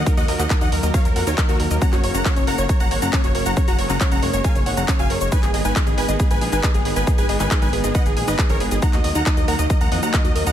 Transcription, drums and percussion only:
0.06 kick loud
0.06 closed hi-hat medium
0.06 shaker medium
0.17 closed hi-hat soft
0.17 shaker soft
0.28 open hi-hat loud
0.39 clap soft
0.39 closed hi-hat medium
0.39 shaker medium
0.50 kick loud
0.50 clap loud
0.50 closed hi-hat medium
0.50 shaker medium
0.61 closed hi-hat medium
0.61 shaker soft
0.72 open hi-hat loud
0.83 closed hi-hat medium
0.83 shaker medium
0.94 kick loud
0.94 closed hi-hat medium
0.94 shaker medium
1.05 closed hi-hat medium
1.05 shaker soft
1.16 open hi-hat loud
1.27 closed hi-hat soft
1.27 shaker medium
1.38 kick loud
1.38 clap loud
1.38 closed hi-hat medium
1.38 shaker medium
1.49 closed hi-hat soft
1.49 shaker soft
1.60 open hi-hat loud
1.71 closed hi-hat medium
1.71 shaker medium
1.82 kick loud
1.82 closed hi-hat medium
1.82 shaker medium
1.93 clap soft
1.93 closed hi-hat soft
1.93 shaker soft
2.04 open hi-hat loud
2.15 closed hi-hat soft
2.15 shaker medium
2.25 kick loud
2.25 clap loud
2.25 closed hi-hat medium
2.25 shaker medium
2.36 closed hi-hat soft
2.36 shaker soft
2.47 open hi-hat loud
2.58 closed hi-hat medium
2.58 shaker medium
2.69 kick loud
2.69 closed hi-hat medium
2.69 shaker medium
2.80 closed hi-hat medium
2.80 shaker soft
2.91 open hi-hat loud
3.02 closed hi-hat medium
3.02 shaker medium
3.13 kick loud
3.13 clap loud
3.13 closed hi-hat medium
3.13 shaker medium
3.24 closed hi-hat medium
3.24 shaker soft
3.35 open hi-hat loud
3.46 closed hi-hat medium
3.46 shaker medium
3.57 kick loud
3.57 closed hi-hat medium
3.57 shaker medium
3.68 closed hi-hat medium
3.68 shaker soft
3.79 open hi-hat loud
3.90 clap soft
3.90 closed hi-hat medium
3.90 shaker medium
4.01 kick loud
4.01 clap loud
4.01 closed hi-hat medium
4.01 shaker medium
4.12 closed hi-hat medium
4.12 shaker soft
4.23 open hi-hat loud
4.34 closed hi-hat medium
4.34 shaker medium
4.44 kick loud
4.44 closed hi-hat medium
4.44 shaker medium
4.55 closed hi-hat medium
4.55 shaker soft
4.66 open hi-hat loud
4.77 closed hi-hat medium
4.77 shaker medium
4.88 kick loud
4.88 clap loud
4.88 closed hi-hat medium
4.88 shaker medium
4.99 closed hi-hat medium
4.99 shaker soft
5.10 open hi-hat loud
5.21 closed hi-hat medium
5.21 shaker medium
5.32 kick loud
5.32 closed hi-hat medium
5.32 shaker medium
5.43 clap soft
5.43 closed hi-hat medium
5.43 shaker soft
5.54 open hi-hat loud
5.65 closed hi-hat medium
5.65 shaker medium
5.76 kick loud
5.76 clap loud
5.76 closed hi-hat medium
5.76 shaker medium
5.87 closed hi-hat medium
5.87 shaker soft
5.98 open hi-hat loud
6.09 closed hi-hat medium
6.09 shaker medium
6.20 kick loud
6.20 closed hi-hat medium
6.20 shaker medium
6.31 closed hi-hat medium
6.31 shaker soft
6.41 open hi-hat loud
6.52 closed hi-hat medium
6.52 shaker medium
6.63 kick loud
6.63 clap loud
6.63 closed hi-hat medium
6.63 shaker medium
6.74 closed hi-hat medium
6.74 shaker soft
6.85 open hi-hat loud
6.96 closed hi-hat medium
6.96 shaker medium
7.07 kick loud
7.07 closed hi-hat medium
7.07 shaker medium
7.18 closed hi-hat medium
7.18 shaker soft
7.29 open hi-hat loud
7.40 clap soft
7.40 closed hi-hat medium
7.40 shaker medium
7.51 kick loud
7.51 clap loud
7.51 closed hi-hat medium
7.51 shaker medium
7.62 closed hi-hat medium
7.62 shaker soft
7.73 open hi-hat loud
7.84 closed hi-hat medium
7.84 shaker medium
7.95 kick loud
7.95 closed hi-hat medium
7.95 shaker medium
8.06 closed hi-hat medium
8.06 shaker soft
8.17 open hi-hat loud
8.28 open hi-hat medium
8.28 shaker medium
8.39 kick loud
8.39 clap loud
8.39 closed hi-hat medium
8.39 shaker medium
8.49 closed hi-hat medium
8.49 shaker soft
8.60 open hi-hat loud
8.71 closed hi-hat medium
8.71 shaker medium
8.82 kick loud
8.82 closed hi-hat medium
8.82 shaker medium
8.93 clap soft
8.93 closed hi-hat medium
8.93 shaker soft
9.04 open hi-hat loud
9.15 closed hi-hat medium
9.15 shaker medium
9.26 kick loud
9.26 clap loud
9.26 closed hi-hat medium
9.26 shaker medium
9.37 closed hi-hat medium
9.37 shaker soft
9.48 open hi-hat loud
9.59 closed hi-hat medium
9.59 shaker medium
9.70 kick loud
9.70 closed hi-hat medium
9.70 shaker soft
9.81 closed hi-hat medium
9.81 shaker soft
9.92 open hi-hat loud
10.03 closed hi-hat medium
10.03 shaker medium
10.14 kick loud
10.14 clap loud
10.14 closed hi-hat medium
10.14 shaker medium
10.25 closed hi-hat medium
10.25 shaker soft
10.36 open hi-hat loud
10.47 closed hi-hat medium
10.47 shaker medium

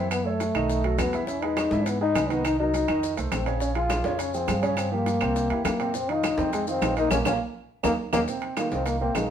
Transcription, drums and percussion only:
0.11 high bongo medium
0.11 high conga soft
0.11 high timbale medium
0.11 claves medium
0.11 maracas medium
0.26 high conga soft
0.40 high bongo medium
0.40 high conga medium
0.40 high timbale medium
0.40 maracas medium
0.55 high bongo soft
0.55 high conga soft
0.55 high timbale medium
0.55 claves medium
0.55 maracas soft
0.70 high bongo medium
0.70 high conga soft
0.70 maracas medium
0.84 high bongo soft
0.84 high conga soft
0.84 high timbale medium
0.98 high bongo soft
0.98 low bongo medium
0.98 high conga medium
0.98 high timbale medium
0.98 low timbale medium
0.98 claves medium
0.98 maracas medium
1.13 high bongo soft
1.13 high conga medium
1.13 high timbale medium
1.13 maracas soft
1.27 high bongo medium
1.27 high conga soft
1.27 maracas medium
1.42 high conga soft
1.42 high timbale medium
1.57 high bongo medium
1.57 high conga medium
1.57 high timbale medium
1.57 claves medium
1.57 maracas medium
1.71 high bongo soft
1.71 high conga medium
1.71 maracas soft
1.86 high bongo medium
1.86 high conga soft
1.86 high timbale medium
1.86 maracas medium
2.00 high bongo soft
2.00 high conga soft
2.15 high bongo soft
2.15 low bongo medium
2.15 high conga medium
2.15 high timbale medium
2.15 low timbale medium
2.15 claves medium
2.15 maracas medium
2.30 high bongo soft
2.30 high conga medium
2.30 high timbale medium
2.30 maracas soft
2.45 high bongo medium
2.45 high conga soft
2.45 high timbale medium
2.45 claves medium
2.45 maracas medium
2.59 high conga soft
2.74 high bongo medium
2.74 high conga medium
2.74 high timbale medium
2.74 maracas medium
2.88 high bongo soft
2.88 high timbale medium
2.88 claves medium
2.88 maracas soft
3.02 high bongo medium
3.02 high conga soft
3.02 maracas medium
3.17 high bongo soft
3.17 high conga soft
3.17 high timbale medium
3.17 maracas medium
3.31 high bongo soft
3.31 low bongo medium
3.31 high conga medium
3.31 high timbale medium
3.31 claves medium
3.31 maracas medium
3.46 high bongo soft
3.46 high timbale medium
3.46 maracas soft
3.60 high bongo medium
3.60 high conga soft
3.60 maracas medium
3.75 high conga soft
3.75 high timbale medium
3.90 high bongo medium
3.90 high conga medium
3.90 high timbale medium
3.90 claves medium
3.90 maracas medium
4.04 high bongo soft
4.04 high conga medium
4.04 maracas soft
4.19 high bongo medium
4.19 high conga soft
4.19 high timbale medium
4.19 maracas medium
4.33 high bongo soft
4.33 high conga soft
4.33 maracas medium
4.48 high bongo soft
4.48 low bongo medium
4.48 high conga medium
4.48 high timbale medium
4.48 claves medium
4.48 maracas medium
4.62 high bongo soft
4.62 high conga medium
4.62 high timbale medium
4.62 maracas soft
4.77 high bongo medium
4.77 high conga soft
4.77 high timbale medium
4.77 claves medium
4.77 maracas medium
4.92 high conga soft
5.06 high bongo medium
5.06 high conga medium
5.06 high timbale medium
5.06 maracas medium
5.21 high bongo soft
5.21 high conga soft
5.21 high timbale medium
5.21 claves medium
5.21 maracas soft
5.36 high bongo medium
5.36 high conga soft
5.36 maracas medium
5.50 high bongo soft
5.50 high conga soft
5.50 high timbale medium
5.65 high bongo soft
5.65 low bongo medium
5.65 high conga medium
5.65 high timbale loud
5.65 low timbale medium
5.65 claves medium
5.65 maracas medium
5.79 high bongo soft
5.79 high timbale medium
5.79 maracas soft
5.94 high bongo medium
5.94 high conga soft
5.94 maracas medium
6.09 high conga soft
6.09 high timbale medium
6.23 high bongo medium
6.23 high conga medium
6.23 high timbale medium
6.23 claves medium
6.23 maracas medium
6.38 high bongo soft
6.38 high conga medium
6.38 maracas soft
6.53 high bongo medium
6.53 high conga soft
6.53 high timbale medium
6.53 maracas medium
6.67 high bongo soft
6.67 high conga soft
6.67 maracas medium
6.82 high bongo soft
6.82 low bongo medium
6.82 high conga medium
6.82 high timbale medium
6.82 low timbale medium
6.82 claves medium
6.82 maracas medium
6.97 high bongo soft
6.97 high timbale medium
6.97 maracas soft
7.10 low bongo medium
7.10 high conga loud
7.10 high timbale medium
7.10 claves loud
7.10 maracas medium
7.25 low bongo medium
7.25 high conga medium
7.25 high timbale medium
7.25 claves medium
7.25 maracas medium
7.83 low bongo medium
7.83 high conga medium
7.83 high timbale loud
7.83 claves loud
7.83 maracas loud
8.13 low bongo loud
8.13 high conga medium
8.13 high timbale loud
8.13 claves medium
8.13 maracas medium
8.27 high bongo medium
8.27 high conga soft
8.27 maracas medium
8.42 high conga soft
8.42 high timbale medium
8.57 high bongo medium
8.57 high conga medium
8.57 high timbale medium
8.57 claves medium
8.57 maracas medium
8.71 high bongo soft
8.71 high conga medium
8.71 maracas soft
8.86 high bongo medium
8.86 high timbale medium
8.86 maracas medium
9.01 high bongo soft
9.01 high conga soft
9.15 high bongo soft
9.15 low bongo medium
9.15 high conga medium
9.15 high timbale medium
9.15 low timbale medium
9.15 claves medium
9.15 maracas medium

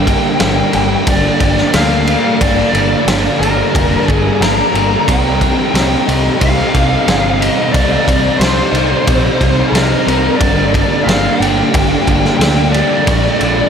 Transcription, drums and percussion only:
0.07 kick medium
0.07 ride medium
0.40 snare loud
0.40 ride loud
0.73 ride medium
1.07 kick loud
1.07 ride medium
1.40 kick medium
1.40 ride medium
1.57 snare soft
1.74 snare loud
1.74 ride loud
2.07 ride medium
2.41 kick loud
2.41 ride medium
2.75 ride medium
3.08 snare loud
3.08 ride loud
3.43 ride medium
3.75 kick loud
3.75 ride medium
4.08 kick medium
4.08 ride medium
4.42 snare loud
4.42 ride medium
4.75 ride medium
5.08 kick loud
5.08 ride medium
5.41 kick medium
5.41 ride medium
5.75 snare loud
5.75 ride medium
6.09 ride medium
6.41 kick loud
6.41 ride medium
6.74 kick medium
6.74 ride medium
7.08 snare loud
7.08 ride medium
7.42 ride medium
7.74 kick loud
7.74 ride medium
8.08 kick medium
8.08 ride medium
8.41 snare loud
8.41 ride loud
8.75 ride medium
9.07 kick loud
9.07 ride medium
9.41 kick medium
9.41 ride medium
9.75 snare loud
9.75 ride medium
10.08 ride medium
10.41 kick loud
10.41 ride medium
10.74 kick medium
10.74 ride medium
11.09 snare loud
11.09 ride medium
11.42 ride medium
11.74 kick loud
11.74 ride medium
12.07 kick medium
12.07 ride medium
12.25 snare soft
12.41 snare loud
12.41 ride loud
12.74 ride medium
13.07 kick loud
13.07 ride medium
13.41 ride medium

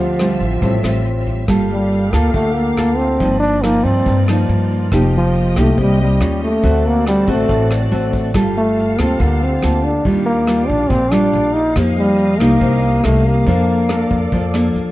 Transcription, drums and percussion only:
0.20 cross-stick medium
0.20 closed hi-hat soft
0.41 kick soft
0.41 closed hi-hat soft
0.62 kick medium
0.62 closed hi-hat medium
0.84 cross-stick medium
0.84 closed hi-hat soft
1.06 closed hi-hat soft
1.27 kick soft
1.27 closed hi-hat soft
1.48 kick medium
1.48 cross-stick medium
1.48 closed hi-hat soft
1.70 closed hi-hat soft
1.92 closed hi-hat soft
2.13 cross-stick medium
2.13 closed hi-hat soft
2.34 kick medium
2.34 closed hi-hat soft
2.56 closed hi-hat soft
2.78 cross-stick medium
2.78 closed hi-hat soft
2.99 closed hi-hat soft
3.20 kick medium
3.20 closed hi-hat soft
3.42 closed hi-hat soft
3.64 cross-stick medium
3.64 closed hi-hat soft
3.86 closed hi-hat soft
4.06 kick medium
4.06 closed hi-hat soft
4.28 cross-stick medium
4.28 closed hi-hat soft
4.49 closed hi-hat soft
4.71 closed hi-hat soft
4.92 kick medium
4.92 cross-stick medium
4.92 closed hi-hat soft
5.13 closed hi-hat soft
5.35 closed hi-hat soft
5.56 cross-stick medium
5.56 closed hi-hat soft
5.78 kick medium
5.78 closed hi-hat soft
6.00 closed hi-hat soft
6.21 cross-stick medium
6.21 closed hi-hat soft
6.42 closed hi-hat soft
6.64 kick medium
6.64 closed hi-hat soft
6.85 closed hi-hat soft
7.07 cross-stick medium
7.07 closed hi-hat soft
7.28 kick soft
7.28 closed hi-hat soft
7.49 kick medium
7.49 closed hi-hat soft
7.71 cross-stick medium
7.71 closed hi-hat soft
7.92 closed hi-hat soft
8.13 kick medium
8.13 closed hi-hat soft
8.34 kick medium
8.34 cross-stick medium
8.34 closed hi-hat soft
8.55 closed hi-hat soft
8.78 closed hi-hat soft
8.99 cross-stick medium
8.99 closed hi-hat soft
9.20 kick medium
9.20 closed hi-hat soft
9.42 closed hi-hat soft
9.63 cross-stick medium
9.63 closed hi-hat soft
9.84 closed hi-hat soft
10.05 kick medium
10.05 closed hi-hat soft
10.26 closed hi-hat soft
10.47 cross-stick medium
10.47 closed hi-hat soft
10.69 closed hi-hat soft
10.90 kick medium
10.90 closed hi-hat soft
11.12 cross-stick medium
11.12 closed hi-hat soft
11.33 closed hi-hat soft
11.55 closed hi-hat soft
11.76 kick medium
11.76 cross-stick medium
11.76 closed hi-hat soft
11.97 closed hi-hat soft
12.18 closed hi-hat soft
12.40 cross-stick medium
12.61 kick medium
12.61 closed hi-hat soft
12.83 closed hi-hat soft
13.04 cross-stick medium
13.04 closed hi-hat soft
13.25 closed hi-hat soft
13.46 kick medium
13.46 closed hi-hat soft
13.68 closed hi-hat soft
13.89 cross-stick medium
13.89 closed hi-hat soft
14.11 kick medium
14.11 closed hi-hat soft
14.32 kick medium
14.32 closed hi-hat soft
14.54 cross-stick medium
14.75 closed hi-hat soft

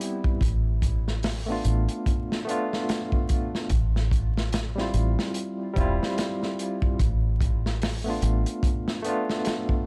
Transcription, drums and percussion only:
0.01 closed hi-hat medium
0.24 kick medium
0.41 kick loud
0.41 closed hi-hat medium
0.82 kick medium
0.82 closed hi-hat medium
1.08 snare soft
1.23 snare loud
1.23 open hi-hat medium
1.65 closed hi-hat medium
1.89 closed hi-hat soft
2.06 kick medium
2.06 closed hi-hat medium
2.32 snare soft
2.49 closed hi-hat medium
2.73 snare soft
2.89 snare loud
2.89 closed hi-hat medium
3.12 kick medium
3.29 kick medium
3.29 closed hi-hat medium
3.55 snare soft
3.70 kick loud
3.70 closed hi-hat medium
3.96 snare soft
4.11 kick medium
4.11 closed hi-hat medium
4.37 snare soft
4.53 snare loud
4.53 closed hi-hat medium
4.78 snare soft
4.94 closed hi-hat medium
5.19 snare medium
5.34 closed hi-hat medium
5.76 kick medium
5.76 closed hi-hat medium
6.03 snare medium
6.18 snare medium
6.18 closed hi-hat medium
6.43 snare soft
6.59 closed hi-hat medium
6.82 kick medium
6.99 kick loud
6.99 closed hi-hat medium
7.41 kick medium
7.41 closed hi-hat medium
7.66 snare soft
7.82 snare loud
7.82 open hi-hat medium
8.22 closed hi-hat medium
8.46 closed hi-hat soft
8.63 kick loud
8.63 closed hi-hat medium
8.88 snare medium
9.05 closed hi-hat medium
9.30 snare soft
9.45 snare loud
9.45 closed hi-hat medium
9.69 kick medium

